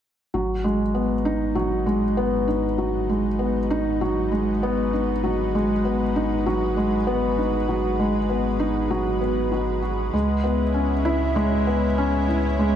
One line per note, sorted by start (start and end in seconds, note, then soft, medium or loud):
0.34 10.11 G#1 medium
0.34 0.63 F#3 medium
0.34 12.76 G#3 medium
0.59 10.14 D#4 medium
0.64 0.82 G#3 medium
0.80 12.10 F#4 medium
0.94 1.12 B3 medium
1.25 1.55 D#4 medium
1.36 12.76 B4 medium
1.55 1.85 F#3 medium
1.86 2.04 G#3 medium
2.17 2.47 B3 medium
2.48 2.66 D#4 medium
2.78 3.08 F#3 medium
3.09 3.27 G#3 medium
3.39 3.57 B3 medium
3.70 4.00 D#4 medium
4.01 4.30 F#3 medium
4.32 4.49 G#3 medium
4.63 4.92 B3 medium
4.93 5.11 D#4 medium
5.24 5.53 F#3 medium
5.55 5.72 G#3 medium
5.85 6.03 B3 medium
6.16 6.45 D#4 medium
6.46 6.76 F#3 medium
6.77 6.94 G#3 medium
7.07 7.36 B3 medium
7.38 7.56 D#4 medium
7.69 7.98 F#3 medium
7.99 8.17 G#3 medium
8.29 8.47 B3 medium
8.59 8.89 D#4 medium
8.91 9.20 F#3 medium
9.21 9.51 B3 medium
9.52 9.81 F#3 medium
9.82 10.12 F#4 medium
10.13 12.76 C#2 medium
10.13 10.43 G#3 medium
10.27 12.76 E4 medium
10.44 10.62 B3 medium
10.44 12.76 C#4 medium
10.74 10.92 C#4 medium
11.05 11.34 E4 medium
11.36 11.65 G#3 medium
11.67 11.85 B3 medium
11.98 12.27 C#4 medium
12.28 12.46 E4 medium
12.59 12.76 G#3 medium